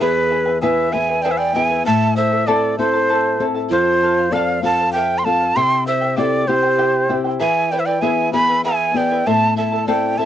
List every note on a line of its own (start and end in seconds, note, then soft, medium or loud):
0.00 1.82 E2 medium
0.00 0.29 E4 medium
0.00 0.31 G#4 medium
0.00 0.59 G#4 medium
0.00 0.30 B4 medium
0.00 0.59 B4 medium
0.00 0.29 E5 medium
0.00 0.31 G#5 medium
0.30 0.46 E4 medium
0.30 0.46 B4 medium
0.30 0.46 E5 medium
0.30 0.45 G#5 medium
0.46 0.61 E4 soft
0.46 0.62 B4 soft
0.46 0.62 G#5 medium
0.61 0.93 B3 medium
0.61 0.92 E4 medium
0.61 0.93 E4 medium
0.61 0.93 G#4 medium
0.61 0.94 G#4 medium
0.61 0.93 B4 medium
0.61 0.92 B4 medium
0.61 0.94 E5 medium
0.61 0.91 E5 medium
0.61 0.93 G#5 medium
0.91 1.54 B3 soft
0.91 1.08 E4 medium
0.91 1.54 E4 soft
0.91 1.54 G#4 medium
0.91 1.08 B4 medium
0.91 1.24 E5 medium
0.91 1.08 E5 medium
0.91 1.24 G#5 loud
0.91 1.08 G#5 medium
1.09 1.24 E4 soft
1.09 1.24 B4 medium
1.09 1.24 G#5 medium
1.22 1.54 E4 medium
1.22 1.55 G#4 medium
1.22 1.54 B4 medium
1.22 1.32 D5 medium
1.22 1.53 E5 medium
1.22 1.33 G5 medium
1.22 1.55 G#5 medium
1.30 1.39 C5 medium
1.30 1.39 E5 medium
1.38 1.56 D5 medium
1.38 1.58 G5 medium
1.54 1.85 B3 soft
1.54 1.70 E4 medium
1.54 1.85 E4 soft
1.54 1.86 G#4 medium
1.54 1.69 B4 medium
1.54 1.85 E5 medium
1.54 1.70 E5 medium
1.54 1.68 G#5 medium
1.54 1.85 G#5 loud
1.70 1.85 E4 soft
1.70 1.86 B4 soft
1.70 1.85 G#5 medium
1.85 3.68 A2 medium
1.85 2.16 E4 medium
1.85 2.16 A4 medium
1.85 2.16 C5 medium
1.85 2.14 E5 loud
1.85 2.15 E5 medium
1.85 2.15 A5 loud
1.85 2.17 A5 medium
2.16 2.32 E4 medium
2.16 2.31 A4 medium
2.16 2.48 C5 medium
2.16 2.32 E5 medium
2.16 2.48 E5 medium
2.16 2.30 A5 medium
2.31 2.47 E4 soft
2.31 2.47 A4 medium
2.31 2.47 A5 medium
2.46 2.77 C4 medium
2.46 2.78 E4 medium
2.46 2.78 E4 soft
2.46 2.78 A4 medium
2.46 2.78 C5 medium
2.46 2.78 D5 medium
2.46 2.77 E5 medium
2.46 2.79 A5 loud
2.78 3.38 C4 soft
2.78 2.93 E4 medium
2.78 3.39 E4 soft
2.78 3.44 A4 medium
2.78 2.93 A4 medium
2.78 3.39 A4 medium
2.78 3.44 C5 loud
2.78 2.94 E5 medium
2.78 2.92 A5 medium
2.93 3.08 E4 soft
2.93 3.09 A4 medium
2.93 3.09 A5 medium
3.09 3.40 E4 medium
3.09 3.40 A4 medium
3.09 3.40 C5 medium
3.09 3.39 E5 medium
3.09 3.41 A5 medium
3.40 3.70 C4 medium
3.40 3.70 E4 soft
3.40 3.55 E4 medium
3.40 3.70 A4 medium
3.40 3.54 A4 medium
3.40 3.56 E5 soft
3.40 3.53 A5 medium
3.55 3.71 E4 soft
3.55 3.71 A4 soft
3.55 3.70 A5 soft
3.69 5.52 F2 medium
3.69 4.33 F4 medium
3.69 4.02 A4 medium
3.69 4.34 C5 loud
3.69 4.02 C5 medium
3.73 4.03 F5 medium
4.03 4.18 A4 medium
4.03 4.18 C5 medium
4.03 4.17 F5 medium
4.18 4.34 C5 soft
4.18 4.33 F5 medium
4.31 4.61 C4 medium
4.31 4.62 F4 soft
4.31 4.63 A4 medium
4.31 4.61 D5 medium
4.31 4.64 F5 medium
4.35 4.64 C5 medium
4.35 4.65 F5 loud
4.62 5.23 C4 soft
4.62 5.23 F4 soft
4.62 5.23 A4 medium
4.62 4.79 A4 medium
4.62 4.78 C5 medium
4.62 4.91 F5 medium
4.62 4.78 F5 medium
4.62 4.92 A5 loud
4.79 4.94 C5 soft
4.79 4.94 F5 medium
4.93 5.23 A4 medium
4.93 5.24 C5 medium
4.93 5.19 E5 medium
4.93 5.25 F5 medium
4.93 5.20 G5 loud
5.18 5.26 G5 medium
5.18 5.26 C6 medium
5.24 5.55 C4 soft
5.24 5.56 F4 soft
5.24 5.40 A4 medium
5.24 5.56 A4 medium
5.24 5.40 C5 medium
5.24 5.57 F5 medium
5.24 5.39 F5 medium
5.24 5.58 A5 loud
5.41 5.55 C5 soft
5.41 5.56 F5 soft
5.56 7.37 C3 medium
5.56 5.85 E4 medium
5.56 5.87 G4 medium
5.56 5.86 C5 medium
5.56 5.84 E5 medium
5.56 5.86 G5 loud
5.56 5.86 G5 medium
5.56 5.86 C6 loud
5.86 6.01 E4 medium
5.86 6.01 C5 medium
5.86 6.16 C5 medium
5.86 6.02 E5 medium
5.86 6.15 E5 medium
5.86 6.00 G5 medium
6.01 6.16 E4 soft
6.01 6.16 C5 soft
6.01 6.16 G5 medium
6.16 6.47 C4 medium
6.16 6.47 E4 medium
6.16 6.47 E4 soft
6.16 6.48 G4 medium
6.16 6.49 A4 medium
6.16 6.48 C5 medium
6.16 6.49 D5 medium
6.16 6.47 E5 medium
6.16 6.48 G5 loud
6.47 7.08 C4 medium
6.47 6.63 E4 medium
6.47 7.08 E4 soft
6.47 7.17 G4 medium
6.47 7.08 G4 medium
6.47 7.17 C5 loud
6.47 6.62 C5 medium
6.47 6.63 E5 medium
6.47 6.61 G5 medium
6.62 6.77 E4 soft
6.62 6.77 C5 soft
6.62 6.78 G5 medium
6.78 7.08 E4 medium
6.78 7.09 G4 medium
6.78 7.09 C5 medium
6.78 7.08 E5 medium
6.78 7.09 G5 medium
7.09 7.39 C4 soft
7.09 7.25 E4 medium
7.09 7.40 E4 soft
7.09 7.40 G4 medium
7.09 7.24 C5 medium
7.09 7.25 E5 medium
7.09 7.23 G5 medium
7.24 7.39 E4 soft
7.24 7.40 C5 medium
7.24 7.40 G5 soft
7.39 9.21 E3 medium
7.39 7.71 E4 medium
7.39 7.71 G#4 medium
7.39 7.71 B4 medium
7.39 7.71 E5 medium
7.39 7.73 E5 medium
7.39 7.71 G#5 medium
7.39 7.73 G#5 loud
7.72 7.87 E4 medium
7.72 7.87 B4 medium
7.72 7.79 D5 medium
7.72 7.87 E5 medium
7.72 7.81 G5 medium
7.72 7.86 G#5 medium
7.77 7.86 C5 medium
7.77 7.87 E5 medium
7.85 8.02 E4 soft
7.85 8.02 B4 medium
7.85 8.02 D5 medium
7.85 8.03 G5 medium
7.85 8.02 G#5 medium
8.01 8.32 B3 medium
8.01 8.32 E4 soft
8.01 8.32 E4 medium
8.01 8.33 G#4 medium
8.01 8.32 G#4 medium
8.01 8.32 B4 medium
8.01 8.32 E5 medium
8.01 8.32 G#5 medium
8.01 8.33 G#5 medium
8.33 8.93 B3 soft
8.33 8.93 E4 soft
8.33 8.48 E4 medium
8.33 8.93 G#4 medium
8.33 8.48 B4 medium
8.33 8.48 E5 medium
8.33 8.62 G#5 medium
8.33 8.47 G#5 medium
8.33 8.62 B5 loud
8.49 8.64 E4 soft
8.49 8.64 B4 soft
8.49 8.64 G#5 medium
8.64 8.95 E4 medium
8.64 8.95 G#4 medium
8.64 8.95 B4 medium
8.64 8.97 E5 medium
8.64 8.94 E5 medium
8.64 8.98 G#5 loud
8.64 8.95 G#5 loud
8.94 9.24 B3 soft
8.94 9.24 E4 soft
8.94 9.10 E4 medium
8.94 9.25 G#4 medium
8.94 9.10 B4 medium
8.94 9.27 D5 medium
8.94 9.10 E5 medium
8.94 9.28 G5 medium
8.94 9.10 G#5 medium
9.11 9.26 E4 soft
9.11 9.26 B4 soft
9.11 9.26 G#5 medium
9.26 10.25 A2 medium
9.26 9.56 E4 medium
9.26 9.57 A4 medium
9.26 9.57 C5 medium
9.26 9.55 E5 medium
9.26 9.56 E5 medium
9.26 9.57 A5 loud
9.26 9.57 A5 medium
9.56 9.72 E4 medium
9.56 9.72 A4 medium
9.56 9.85 E5 medium
9.56 9.72 E5 medium
9.56 9.86 A5 medium
9.56 9.71 A5 medium
9.72 9.87 E4 soft
9.72 9.87 A4 soft
9.72 9.87 A5 soft
9.86 10.17 C4 medium
9.86 10.18 E4 medium
9.86 10.18 A4 medium
9.86 10.18 C5 medium
9.86 10.20 D5 medium
9.86 10.17 E5 medium
9.86 10.20 G5 medium
9.86 10.18 A5 medium
10.18 10.25 C4 medium
10.18 10.25 E4 soft
10.18 10.25 E4 medium
10.18 10.25 A4 medium
10.18 10.25 E5 medium
10.18 10.25 A5 loud
10.18 10.25 A5 medium